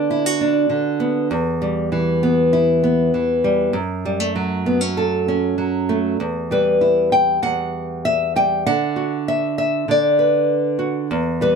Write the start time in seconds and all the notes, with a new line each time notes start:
Already playing: D3 B3 D4
0.11 E4
0.26 F#4
0.41 D4
0.70 D3
1.00 B3
1.31 E2
1.62 G3
1.92 E3
2.23 B3
2.53 E4
2.84 B3
3.14 E3
3.44 G3
3.73 F#2
4.05 G3
4.20 A3
4.36 F#3
4.66 B3
4.81 C#4
4.97 A4
5.28 C#4
5.58 F#3
5.89 A3
6.20 E2
6.51 G3 B4
6.81 E4
7.12 G5
7.42 E2 F#5
8.05 E5
8.36 G3 G5
8.66 D3 F#5
8.96 F#4
9.28 E5
9.58 E5
9.88 D3 D5
10.19 B4
10.79 F#4
11.11 E2
11.41 G3 B4